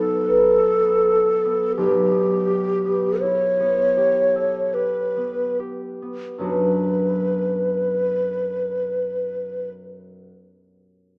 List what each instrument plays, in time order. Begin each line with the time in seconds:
Already playing: harp B1 B3 D#4 A4, flute A4
0.23 harp B4
0.51 harp A4
0.82 harp B3
1.13 harp A4
1.45 harp B3
1.77 harp B1, flute G4
2.11 harp B3
2.48 harp G4
2.85 harp B3
3.21 harp E4, flute C#5
3.60 harp B3
3.97 harp G4
4.36 harp A4
4.74 harp G4, flute B4
5.17 harp B3
5.59 harp G4
6.02 harp B3
6.38 harp B1 F#2 F#3 B3 F#4, flute B4
6.43 harp D4